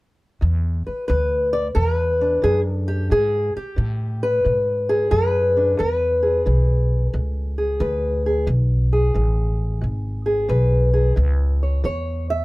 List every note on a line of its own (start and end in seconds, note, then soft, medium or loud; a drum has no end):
0.41 1.04 E2 medium
0.41 0.83 E2 medium
0.87 1.07 B4 soft
0.87 muted upright bass stroke soft
1.08 1.74 D2 medium
1.08 1.71 E3 medium
1.08 1.53 B4 medium
1.53 1.66 D5 loud
1.75 2.41 E2 medium
1.75 2.38 B2 medium
1.75 1.95 A#4 loud
1.95 2.63 B4 loud
2.21 3.13 D4 soft
2.42 3.08 F#2 medium
2.42 3.05 E3 medium
2.42 2.60 G#4 medium
2.63 2.76 A#4 loud
2.76 3.09 A4 loud
2.88 3.10 G4 medium
3.10 3.73 E2 medium
3.10 3.52 G#2 medium
3.10 3.56 G#4 loud
3.56 4.23 G4 medium
3.56 muted upright bass stroke soft
3.76 4.43 A2 medium
3.76 4.39 E3 medium
4.23 5.10 B4 medium
4.45 5.10 G#2 medium
4.45 5.07 B2 medium
4.89 5.79 G#4 medium
5.11 5.77 F#2 medium
5.11 5.74 E3 medium
5.11 5.78 B4 loud
5.57 5.80 D4 soft
5.77 6.41 E2 medium
5.77 6.45 E2 medium
5.77 7.15 B4 medium
6.23 7.57 G#4 soft
6.46 7.12 B1 medium
6.46 7.09 E3 medium
7.14 7.79 C#2 medium
7.14 7.76 B2 medium
7.14 7.80 A4 medium
7.58 8.25 G#4 soft
7.80 8.46 D2 medium
7.80 8.43 E3 medium
7.80 8.45 B4 medium
8.26 8.46 G#4 soft
8.47 9.13 B1 medium
8.47 9.10 E2 medium
8.93 10.25 G#4 medium
9.14 9.80 A1 medium
9.14 9.77 E3 medium
9.81 10.48 G#1 medium
9.81 10.45 B2 medium
10.26 10.92 G#4 medium
10.48 11.15 B1 medium
10.48 11.12 E3 medium
10.48 11.14 B4 medium
10.94 11.14 G#4 medium
11.16 11.82 C#2 medium
11.16 11.79 A2 medium
11.63 11.85 C#5 soft
11.84 12.45 E2 medium
11.84 12.45 E3 medium
11.84 12.30 C#5 loud
12.30 12.45 E5 medium